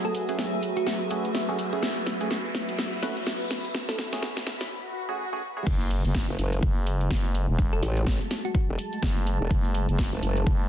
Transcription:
Already playing: F#3 A3 F#4 G#4 B4 E5, riser
0.05 A4, shaker
0.14 open hi-hat, shaker
0.29 A3 C#4 F#4 G#4, closed hi-hat, shaker
0.39 snare, closed hi-hat, shaker
0.53 shaker
0.62 open hi-hat, shaker
0.76 F#4, closed hi-hat, shaker
0.87 F#4, snare, closed hi-hat, shaker
1.01 shaker
1.10 A3 C#4 F#4 G#4, open hi-hat, shaker
1.25 closed hi-hat, shaker
1.34 snare, closed hi-hat, shaker
1.49 A3 C#4 F#4 G#4, shaker
1.59 open hi-hat, shaker
1.73 A3 C#4 F#4 G#4, closed hi-hat, shaker
1.83 snare, closed hi-hat, shaker
1.97 B5, shaker
2.07 snare, open hi-hat, shaker
2.21 A3 C#4 F#4 G#4, closed hi-hat, shaker
2.31 snare, closed hi-hat, shaker
2.45 shaker
2.55 snare, open hi-hat, shaker
2.68 closed hi-hat, shaker
2.79 snare, closed hi-hat, shaker
2.93 shaker
3.03 A3 C#4 F#4 B4, snare, open hi-hat, shaker
3.17 closed hi-hat, shaker
3.27 snare, closed hi-hat, shaker
3.40 shaker
3.51 snare, open hi-hat, shaker
3.65 closed hi-hat, shaker
3.75 snare, closed hi-hat, shaker
3.89 A4, snare, shaker
3.98 snare, open hi-hat, shaker
4.13 A3 C#4 F#4 G#4, snare, closed hi-hat, shaker
4.23 snare, closed hi-hat, shaker
4.37 snare, shaker
4.46 snare, open hi-hat, shaker
4.60 snare, closed hi-hat, shaker
4.71 swell
5.09 A3 C#4 F#4 G#4
5.33 A3 C#4 F#4 G#4
5.57 A3 C#4 F#4 G#4
5.67 F#1 F#3 G#3 A3, kick, closed hi-hat, crash, impact
5.81 closed hi-hat
5.91 open hi-hat
6.05 F#1, closed hi-hat
6.15 kick, snare, closed hi-hat
6.29 F#1, closed hi-hat
6.39 F#1, open hi-hat
6.53 closed hi-hat
6.59 F#1 A5, kick, closed hi-hat
6.87 open hi-hat
7.01 closed hi-hat
7.11 F#1, kick, snare, closed hi-hat
7.25 closed hi-hat
7.35 open hi-hat
7.49 E1
7.59 kick, closed hi-hat
7.73 A4, closed hi-hat
7.83 A1, open hi-hat
7.97 closed hi-hat
8.07 kick, snare, closed hi-hat
8.21 closed hi-hat
8.31 snare, open hi-hat
8.45 F#4, closed hi-hat
8.55 F#4, kick, closed hi-hat
8.69 E1
8.79 open hi-hat
8.93 closed hi-hat
9.03 F#1, kick, snare, closed hi-hat
9.17 closed hi-hat
9.27 open hi-hat
9.41 E1
9.51 F#1, kick, closed hi-hat
9.65 closed hi-hat
9.75 open hi-hat
9.89 F#1, closed hi-hat
9.99 kick, snare, closed hi-hat
10.13 F#1, closed hi-hat
10.23 F#1, open hi-hat
10.37 closed hi-hat
10.47 F#1, kick, closed hi-hat

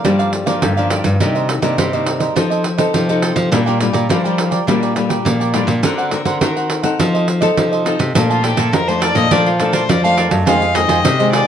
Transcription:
0.04 G2 F3 G3 A#3 D4 G4 A#4 D5 F5, pandeiro
0.19 A#4 D5 F5, pandeiro
0.33 muted cavaquinho stroke, pandeiro
0.46 F3 A#3 D4 A#4 D5 F5, pandeiro
0.62 G2 D3, pandeiro
0.77 F3 A#3 D4 A#4 D5 F5, pandeiro
0.90 G4 A#4 D5 F5, pandeiro
1.04 G2, pandeiro
1.20 C3 D#3 A#3 D4 D#4 A#4 C5 D#5, pandeiro
1.35 A#4 C5 D#5, pandeiro
1.49 muted cavaquinho stroke, pandeiro
1.62 C3 D#3 A#3 D4 A#4 C5 D#5, pandeiro
1.78 G2 C3 D#4 A#4 C5 D#5, pandeiro
1.93 D#3 A#3 D4 A#4 C5 D#5, pandeiro
2.06 pandeiro
2.20 A#4 C5 D#5, pandeiro
2.35 F3 C4 D#4 F4 A4 C5 D#5, pandeiro
2.50 A4 C5 D#5, pandeiro
2.64 muted cavaquinho stroke, pandeiro
2.78 C4 D#4 A4 C5 D#5, pandeiro
2.94 C3 F3, pandeiro
3.09 C4 D#4 A4 C5 D#5, pandeiro
3.22 F4 A4 C5 D#5, pandeiro
3.36 F3, pandeiro
3.51 A#2 G3 D4 F4 A#4 D5 G5, pandeiro
3.66 G3 D4 F4 A#4 D5 G5, pandeiro
3.80 G3 D4 F4, muted cavaquinho stroke, pandeiro
3.93 A#2 A#4 D5 G5, pandeiro
4.09 F3 G3 D4 F4 A#4 D5 G5, pandeiro
4.24 G3 D4 F4 A#4 D5 G5, pandeiro
4.38 pandeiro
4.51 A#4 D5 G5, pandeiro
4.67 A#2 G3 A#3 D4 F4 A#4 D5 G5, pandeiro
4.82 A#4 D5 G5, pandeiro
4.95 G3 D4 F4, muted cavaquinho stroke, pandeiro
5.09 A#4 D5 G5, pandeiro
5.25 A#2 F3, pandeiro
5.40 A#4 D5 G5, pandeiro
5.54 G3 D4 F4 A#4 D5 G5, pandeiro
5.67 A#2, pandeiro
5.83 D3 C4 D4 F#4 A#4 C5 F#5, pandeiro
5.98 A#4 C5 F#5, pandeiro
6.11 C4 F#4 A#4, muted cavaquinho stroke, pandeiro
6.25 D3 A#4 C5 F#5, pandeiro
6.41 D#3 C4 D4 F#4 A#4 C5 F#5, pandeiro
6.56 A#4 C5 F#5, pandeiro
6.70 pandeiro
6.83 C4 D#4 A4 A#4 C5 F#5, pandeiro
6.99 F3 F4 A4 C5 D#5, pandeiro
7.14 A4 C5 D#5, pandeiro
7.28 muted cavaquinho stroke, pandeiro
7.41 C4 D#4 A4 C5 D#5, pandeiro
7.57 C3 F3, pandeiro
7.72 A4 C5 D#5, pandeiro
7.85 C4 D#4 F4 A4 C5 D#5, pandeiro
7.99 C3, pandeiro
8.15 A#2 F3 A3 D4 A#4 D5 F5 A5, pandeiro
8.30 F4 D5 F5 A5, pandeiro
8.43 F3 A3 D4 G4 A#4 D5 F5 A5, pandeiro
8.57 A#2 A4 A#4 D5 F5 A5, pandeiro
8.72 F2 F3 A#4, pandeiro
8.87 F3 A3 D4 C5 D5 F5 A5, pandeiro
9.01 A#4 D5 F5 A5, pandeiro
9.15 A#2 F3 A3 D4 D#5, pandeiro
9.31 A#2 F3 A3 D4 A#4 D5 F5 A5, pandeiro
9.46 F4, pandeiro
9.59 F3 A3 D4 A4 A#4 D5 F5 A5, pandeiro
9.72 A#4 C5 D5 F5 A5, pandeiro
9.89 F2 F3 D5, pandeiro
10.04 F3 A3 D4 D5 F5 A5, pandeiro
10.17 A#4 D5 F5 A5, pandeiro
10.31 F#2 D5 F5 A5, pandeiro
10.46 F2 D#3 G#3 C4 F4 G#4 C5 D#5 F5, pandeiro
10.61 G#4 C5 D#5, pandeiro
10.75 D#3 G#3 C4 F4 G#4 C5 D#5, pandeiro
10.88 F2 F4 G#4 C5 D#5, pandeiro
11.05 C3, pandeiro
11.19 D#3 G#3 C4 G#4 C5 D#5, pandeiro
11.32 F4 G#4 C5 D5 D#5, pandeiro

